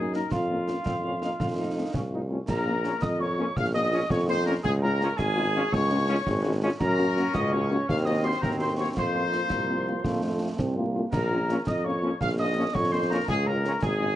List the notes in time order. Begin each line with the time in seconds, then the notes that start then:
Already playing: F#2 D#4 G#4
0.13 A#3 D#4 A#4 A#5, snare
0.30 F2 F4 F5, concert bass drum, snare
0.50 A#3 C#4 F4
0.68 A#3 C#4 F4, snare
0.86 F2 C4, concert bass drum, snare
1.04 A#3 C#4 F4
1.22 A#3 C#4 D#4 F4, snare
1.40 F2 F4, concert bass drum, snare
1.58 A3 C4 D#4 F4
1.76 A3 C4 F4
1.94 C2 C#4, concert bass drum, snare
2.12 A3 C4 D#4 F4
2.30 A3 C4 C#4 F4
2.48 A#1 A#4 A#5, concert bass drum, snare, crash
2.66 A#3 C#4 F4
2.84 F3 A#3 C#4 F4, snare
3.01 F2 D#5 D#6, concert bass drum, snare
3.20 A#3 C#4 F4 C#5 C#6
3.38 F3 A#3 C#4 F4
3.56 A#1 F5 F6, concert bass drum, snare
3.74 A#3 C#4 F4 D#5 D#6
3.92 F3 A#3 C#4 F4
4.10 F2 C#5 C#6, concert bass drum, snare
4.27 A#3 C#4 F4 C5 C6
4.45 F3 A#3 C#4 F4 A#4 A#5
4.63 C#2 G#4 G#5, concert bass drum, snare, crash
4.81 G#3 C#4 F4 A#4 A#5
5.00 F3 G#3 C#4 F4, snare
5.17 G#1 G#4 G#5, concert bass drum, snare
5.36 G#3 C#4 F4
5.55 F3 G#3 C#4 F4
5.72 C#2 C#5 C#6, concert bass drum, snare
5.91 G#3 C#4 F4
6.08 F3 G#3 C#4 F4
6.26 G#1, concert bass drum, snare
6.45 G#3 C#4 F4
6.62 F3 G#3 C#4 F4
6.80 F#2 F#3 C#4 A#4 A#5, concert bass drum, snare, crash
6.99 A#3 C#4 F#4
7.16 A#3 C#4 F#4, snare
7.34 C#2 D#5 D#6, concert bass drum, snare
7.52 A#3 C#4 F#4 C#5 C#6
7.70 A#3 C#4 F#4
7.88 D#2 F#3 C4 F5 F6, concert bass drum, snare
8.05 A#3 C4 F#4 D#5 D#6
8.23 A#3 C4 F#4 C5 C6
8.41 D#2 F#3 C4 A#4 A#5, concert bass drum, snare
8.60 A#3 C4 F#4 C5 C6
8.77 A#3 C4 F#4 C#5 C#6
8.95 F2 F3 A#3 C5 C6, concert bass drum, snare, crash
9.14 A#3 C4 F4
9.32 A#3 C4 F4, snare
9.50 C2 F3, concert bass drum, snare
9.69 A#3 C4 F4
9.87 A#3 C4 F4
10.04 F2 F3 A3 A#3, concert bass drum, snare
10.23 A3 C4 F4
10.41 A3 C4 F4
10.58 C2 C4, concert bass drum, snare
10.77 A3 A#3 C4 F4
10.96 A3 C4 F4
11.12 A#1 A#4 A#5, concert bass drum, snare, crash
11.31 A#3 C#4 F4
11.49 F3 A#3 C#4 F4, snare
11.67 F2 D#5 D#6, concert bass drum, snare
11.84 A#3 C#4 F4 C#5 C#6
12.03 F3 A#3 C#4 F4
12.20 A#1 F5 F6, concert bass drum, snare
12.38 A#3 C#4 F4 D#5 D#6
12.56 F3 A#3 C#4 F4
12.74 F2 C#5 C#6, concert bass drum, snare
12.92 A#3 C#4 F4 C5 C6
13.09 F3 A#3 C#4 F4 A#4 A#5
13.28 C#2 G#4 G#5, concert bass drum, snare, crash
13.46 G#3 C#4 F4 A#4 A#5
13.64 F3 G#3 C#4 F4, snare
13.82 G#1 G#4 G#5, concert bass drum, snare
14.00 G#3 C#4 F4